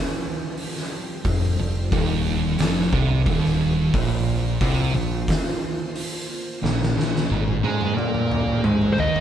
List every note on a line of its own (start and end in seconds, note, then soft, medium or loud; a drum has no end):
0.00 3.90 F3 medium
0.00 3.90 C4 medium
0.00 3.90 G4 medium
0.57 open hi-hat medium
0.76 snare soft
1.25 1.57 F1 medium
1.25 1.53 F2 medium
1.25 kick loud
1.25 open hi-hat medium
1.59 1.91 F1 medium
1.59 1.87 F2 medium
1.92 2.55 D#1 loud
1.92 2.59 D#2 loud
1.92 kick loud
1.92 open hi-hat medium
2.59 2.91 F1 loud
2.59 2.92 F2 loud
2.59 snare loud
2.59 open hi-hat medium
2.92 3.24 C2 loud
2.92 3.26 C3 loud
2.92 kick loud
3.26 3.90 D#1 medium
3.26 3.93 D#2 loud
3.26 kick loud
3.26 open hi-hat medium
3.45 snare soft
3.93 4.57 A#1 loud
3.93 4.60 A#2 loud
3.93 9.20 A#3 medium
3.93 6.60 F4 medium
3.93 9.20 C5 medium
3.93 kick loud
3.93 open hi-hat medium
4.61 4.92 C2 loud
4.61 4.94 C3 loud
4.61 kick loud
4.61 open hi-hat medium
4.95 5.26 A#1 medium
4.95 5.22 A#2 medium
5.28 kick loud
5.28 snare loud
5.28 open hi-hat medium
5.96 open hi-hat medium
6.63 6.94 A#1 loud
6.63 6.89 A#2 medium
6.63 9.20 G4 medium
6.63 snare medium
6.82 snare medium
6.96 7.27 A#1 medium
6.96 7.23 A#2 medium
6.96 snare medium
7.16 snare medium
7.30 7.61 G#1 loud
7.30 7.62 G#2 loud
7.30 high tom medium
7.48 high tom medium
7.64 7.95 G#2 medium
7.64 7.96 G#3 loud
7.64 high tom medium
7.81 mid tom medium
7.97 8.60 A#2 loud
7.97 8.63 A#3 loud
7.97 mid tom loud
8.14 mid tom medium
8.31 mid tom loud
8.48 mid tom medium
8.64 8.95 G#2 medium
8.64 8.98 G#3 loud
8.64 mid tom loud
8.82 floor tom medium
8.93 8.99 C5 medium
8.98 9.20 D#2 medium
8.98 9.20 D#3 medium
8.98 9.20 D#5 medium
8.98 floor tom loud
9.16 floor tom loud